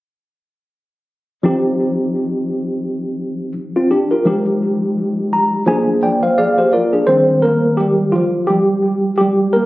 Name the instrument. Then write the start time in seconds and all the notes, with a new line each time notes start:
tine electric piano
1.43 F3 C4 D#4 G4
3.76 C4 F4
3.91 D4 G4
4.11 F4 A#4
4.25 F3 G#3 D#4 G4
5.33 A#5
5.66 F3 A#3 D4 G#4 G#5
6.03 D5 G5
6.23 C5 F5
6.38 G#4 D5 F5
6.58 G4 C5
6.73 F4 A#4 D5
6.93 D4 G#4
7.07 D#3 G3 C4 C5
7.42 A#3 A#4
7.77 G3 G4
8.12 F3 F4
8.47 G3 G4
9.18 G3 G4
9.53 A#3 A#4